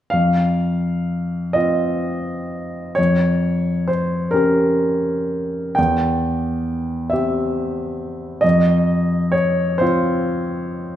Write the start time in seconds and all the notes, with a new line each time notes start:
0.10 F2 F5
1.53 C4 F4 D#5
2.95 F2 C#5
3.88 C5
4.31 C#4 G4 A#4
5.75 E2 G5
7.10 C4 G4 E5
8.41 F2 D#5
9.32 C#5
9.78 C4 F4 C5